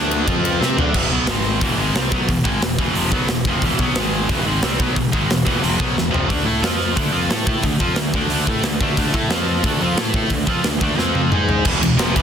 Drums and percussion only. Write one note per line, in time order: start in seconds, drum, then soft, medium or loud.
0.11 ride medium
0.28 kick loud
0.28 ride loud
0.45 ride medium
0.62 snare medium
0.78 floor tom loud
0.94 kick loud
0.94 crash loud
1.27 snare loud
1.27 open hi-hat medium
1.61 kick loud
1.61 open hi-hat medium
1.95 snare loud
1.95 open hi-hat medium
2.12 kick loud
2.29 kick loud
2.29 open hi-hat medium
2.45 kick loud
2.62 snare loud
2.62 open hi-hat medium
2.79 kick loud
2.95 open hi-hat medium
3.12 kick loud
3.28 snare loud
3.28 open hi-hat medium
3.45 kick loud
3.62 kick medium
3.62 open hi-hat medium
3.79 kick loud
3.95 snare loud
3.95 open hi-hat medium
4.29 kick loud
4.29 open hi-hat medium
4.62 snare loud
4.62 open hi-hat medium
4.80 kick loud
4.96 kick loud
4.96 open hi-hat medium
5.13 kick loud
5.30 snare loud
5.30 open hi-hat medium
5.47 kick loud
5.64 open hi-hat medium
5.80 kick loud
5.98 snare medium
6.14 floor tom medium
6.30 kick loud
6.30 open hi-hat medium
6.63 snare loud
6.63 open hi-hat medium
6.97 kick loud
6.97 open hi-hat medium
7.30 snare loud
7.30 open hi-hat medium
7.47 kick loud
7.63 kick loud
7.63 open hi-hat medium
7.80 kick loud
7.96 snare loud
7.96 open hi-hat medium
8.14 kick loud
8.30 open hi-hat medium
8.47 kick loud
8.63 snare loud
8.63 open hi-hat medium
8.81 kick loud
8.97 kick loud
8.97 open hi-hat medium
9.14 kick loud
9.30 snare loud
9.30 open hi-hat medium
9.64 kick loud
9.64 open hi-hat medium
9.97 snare loud
9.97 open hi-hat medium
10.14 kick loud
10.30 kick loud
10.30 open hi-hat medium
10.47 kick loud
10.64 snare loud
10.64 open hi-hat medium
10.81 kick loud
10.99 snare medium
11.15 high tom medium
11.32 mid tom medium
11.49 floor tom medium
11.65 kick loud
11.65 crash loud
11.83 ride medium
11.99 snare loud
11.99 ride loud
12.16 kick loud
12.16 ride medium